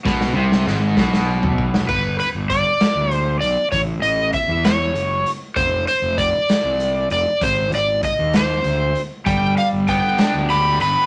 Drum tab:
CC |------------|x-----------|------------|------------|
HH |------------|--x-x-x-x-x-|x-x-x-x-x-x-|x-x-x-x-x-x-|
SD |oo-oo-oo---o|------o-----|------o-----|------o-----|
FT |---------o--|------------|------------|------------|
BD |o-----o---o-|o---o-------|o---o-------|o---o-------|

CC |------------|------------|
HH |x-x-x-x-x-x-|x-x-x-x-x-x-|
SD |------o-----|------o-----|
FT |------------|------------|
BD |o---o-------|o---o-------|